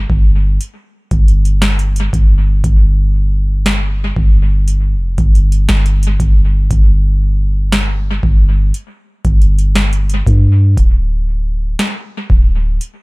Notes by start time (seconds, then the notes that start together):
0.10 G1, kick
0.61 closed hi-hat
1.11 G1, kick, closed hi-hat
1.28 closed hi-hat
1.45 closed hi-hat
1.62 snare, closed hi-hat
1.79 closed hi-hat
1.96 closed hi-hat
2.13 G1, kick, closed hi-hat
2.64 G1, kick, closed hi-hat
3.66 snare, closed hi-hat
4.16 G1, kick
4.68 closed hi-hat
4.95 F1
5.18 G1, kick, closed hi-hat
5.35 closed hi-hat
5.52 closed hi-hat
5.69 G1, snare, closed hi-hat
5.86 closed hi-hat
6.03 closed hi-hat
6.20 G1, kick, closed hi-hat
6.71 G1, kick, closed hi-hat
7.72 snare, closed hi-hat
8.23 G1, kick
8.74 closed hi-hat
9.25 G1, kick, closed hi-hat
9.42 closed hi-hat
9.59 closed hi-hat
9.75 snare, closed hi-hat
9.93 closed hi-hat
10.10 closed hi-hat
10.27 G2, kick, closed hi-hat
10.77 D1, kick, closed hi-hat
11.79 snare, closed hi-hat
12.30 D1, kick
12.81 closed hi-hat